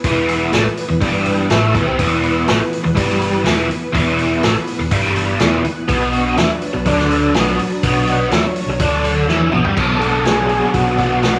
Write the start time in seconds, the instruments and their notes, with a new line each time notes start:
Already playing: string machine E3 B3 B4
0.04 picked electric bass E1, overdriven electric guitar E2 E3, kick, open hi-hat
0.28 open hi-hat
0.52 picked electric bass A1, overdriven electric guitar A2 A3, snare, open hi-hat
0.65 muted overdriven electric guitar stroke, muted picked electric bass stroke
0.77 open hi-hat
0.89 picked electric bass E1, overdriven electric guitar E2
1.00 picked electric bass G1, overdriven electric guitar G2 G3, kick, open hi-hat
1.25 open hi-hat
1.50 picked electric bass A1, overdriven electric guitar A2 A3, snare, open hi-hat
1.74 picked electric bass E1, overdriven electric guitar E2 E3, kick, open hi-hat
1.86 picked electric bass C2, overdriven electric guitar C3 C4
1.99 picked electric bass E1, overdriven electric guitar E2 E3, kick, open hi-hat
2.23 open hi-hat
2.48 picked electric bass A1, overdriven electric guitar A2 A3, snare, open hi-hat
2.60 muted overdriven electric guitar stroke, muted picked electric bass stroke
2.73 open hi-hat
2.84 picked electric bass E1, overdriven electric guitar E2
2.95 picked electric bass G1, overdriven electric guitar G2 G3, kick, open hi-hat
3.10 snare
3.22 open hi-hat
3.44 picked electric bass E1, overdriven electric guitar E2 E3, snare, open hi-hat
3.69 muted overdriven electric guitar stroke, muted picked electric bass stroke, open hi-hat
3.93 picked electric bass E1, overdriven electric guitar E2 E3, kick, open hi-hat
4.18 open hi-hat
4.43 picked electric bass A1, overdriven electric guitar A2 A3, snare, open hi-hat
4.56 muted overdriven electric guitar stroke, muted picked electric bass stroke
4.67 open hi-hat
4.79 picked electric bass E1, overdriven electric guitar E2
4.91 picked electric bass G1, overdriven electric guitar G2 G3, kick, open hi-hat
5.04 snare
5.16 open hi-hat
5.40 picked electric bass E1, overdriven electric guitar E2 E3, snare, open hi-hat
5.64 muted picked electric bass stroke, muted overdriven electric guitar stroke, open hi-hat
5.88 picked electric bass B1, overdriven electric guitar B2 B3, string machine F#3 D4, kick, open hi-hat
6.13 open hi-hat
6.37 picked electric bass E2, overdriven electric guitar E3 E4, snare, open hi-hat
6.50 muted overdriven electric guitar stroke, muted picked electric bass stroke
6.62 open hi-hat
6.73 picked electric bass B1, overdriven electric guitar B2
6.86 picked electric bass D2, overdriven electric guitar D3 D4, kick, open hi-hat
6.99 snare
7.11 open hi-hat
7.34 picked electric bass B1, overdriven electric guitar B2 B3, snare, open hi-hat
7.59 muted picked electric bass stroke, muted overdriven electric guitar stroke, open hi-hat
7.83 picked electric bass B1, overdriven electric guitar B2 B3, string machine C#5, kick, open hi-hat
8.07 open hi-hat
8.31 picked electric bass E2, overdriven electric guitar E3 E4, snare, open hi-hat
8.43 muted picked electric bass stroke, muted overdriven electric guitar stroke
8.56 open hi-hat
8.66 picked electric bass B1, overdriven electric guitar B2
8.80 picked electric bass D2, overdriven electric guitar D3 D4, kick, open hi-hat
9.04 open hi-hat
9.27 picked electric bass E2, overdriven electric guitar E3 E4, snare
9.40 high tom
9.52 picked electric bass B1, overdriven electric guitar B2 B3, mid tom
9.64 picked electric bass G2, overdriven electric guitar G3 G4, floor tom
9.76 picked electric bass B1, overdriven electric guitar B2 F#3 B3 D4, kick, crash
9.99 overdriven electric guitar B3 D4, transistor combo organ A4, open hi-hat
10.04 overdriven electric guitar F#3
10.25 overdriven electric guitar B2 F#3 B3 D4, transistor combo organ G#4, snare, open hi-hat
10.49 open hi-hat
10.73 picked electric bass B1, transistor combo organ F#4, kick, open hi-hat
10.98 picked electric bass B1, overdriven electric guitar F#3 B3 D4, kick, open hi-hat
11.22 overdriven electric guitar B2 F#3 B3 D4, snare, open hi-hat